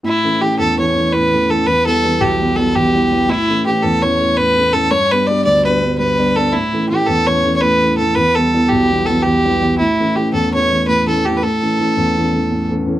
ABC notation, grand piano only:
X:1
M:9/8
L:1/8
Q:3/8=111
K:Amix
V:1 name="Grand piano" clef=bass
A,, [E,A,C] [E,A,C] E,, [E,A,C] [E,A,C] A,, [E,A,C] [E,A,C] | E,, [E,G,B,] [E,G,B,] B,,, [E,G,B,] [E,G,B,] E,, [E,G,B,] [E,G,B,] | A,, [E,A,C] [E,A,C] E,, [E,A,C] [E,A,C] A,, [E,A,C] [E,A,C] | G,, [G,B,D] [G,B,D] D,, [G,B,D] [G,B,D] G,, [G,B,D] [G,B,D] |
A,, [E,A,C] [E,A,C] E,, [E,A,C] [E,A,C] A,, [E,A,C] [E,A,C] | E,, [E,G,B,] [E,G,B,] B,,, [E,G,B,] [E,G,B,] E,, [E,G,B,] [E,G,B,] | A,, [E,A,C] [E,A,C] E,, [E,A,C] [E,A,C] A,, [E,A,C] [E,A,C] | A,, [E,A,C] [E,A,C] E,, [E,A,C] [E,A,C] A,, [E,A,C] [E,A,C] |]